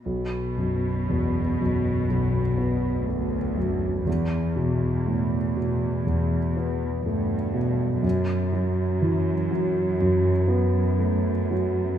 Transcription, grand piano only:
\new Staff \with { instrumentName = "Grand piano" } { \clef bass \time 4/4 \key b \minor \tempo 4 = 60 b,,8 fis,8 e,8 fis,8 b,,8 b8 a8 fis,8 | e,8 b,8 a,8 b,8 e,8 b8 a8 b,8 | fis,8 fis8 e8 fis8 fis,8 b8 a8 fis8 | }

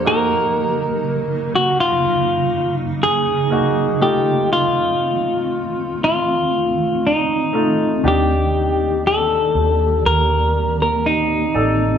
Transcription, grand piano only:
<<
  \new Staff \with { instrumentName = "Grand piano" } { \time 4/4 \key f \mixolydian \tempo 4 = 60 <bes ees' ges'>2 r4. <bes ees' ges'>8 | <a ees' f'>2 r4. <a ees' f'>8 | <d' ees' g'>2 r4. <ees' a' d''>8 | }
  \new Staff \with { instrumentName = "Grand piano" } { \clef bass \time 4/4 \key f \mixolydian r1 | r1 | ees4. r2 r8 | }
>>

